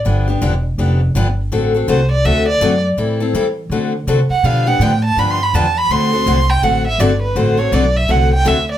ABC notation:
X:1
M:4/4
L:1/16
Q:"Swing" 1/4=164
K:Dmix
V:1 name="Violin"
z16 | z4 c2 d2 e2 d4 z2 | z12 z2 f2 | =f2 ^f2 g2 a2 (3b2 c'2 b2 a2 b2 |
c'6 g2 f2 e2 d2 B2 | c2 ^c2 d2 e2 f2 g2 e2 d2 |]
V:2 name="Steel-string acoustic guitar"
[D,=F,B,DG]2 [B,DG]2 [D,F,B,DG] z3 [D,F,B,DG]2 z2 [D,F,B,DG] z3 | [D,A,CFA]2 [CFA]2 [D,A,CFA] z3 [D,A,CFA]2 z2 [D,A,CFA] z3 | [E,G,CEA]2 [CEA]2 [E,G,CEA] z3 [D,A,CFA]2 z2 [D,A,CFA] z3 | [D,=F,B,DG]2 [B,DG]2 [D,F,B,DG] z3 [D,F,B,DG]2 z2 [D,F,B,DG] z3 |
[D,A,CFA]2 [CFA]2 [D,A,CFA] z3 [D,A,CFA]2 z2 [D,A,CFA] z3 | [D,A,CFA]2 [CFA]2 [D,A,CFA] z3 [D,A,CFA]2 z2 [D,A,CFA] z3 |]
V:3 name="Upright bass" clef=bass
G,,,4 E,,,4 =F,,,4 G,,,4 | A,,,4 C,,4 D,,4 F,,4 | A,,4 E,4 D,4 C,2 z2 | B,,4 A,,4 G,,4 E,,4 |
D,,4 C,,4 A,,,4 G,,,4 | A,,,4 B,,,4 C,,4 D,,4 |]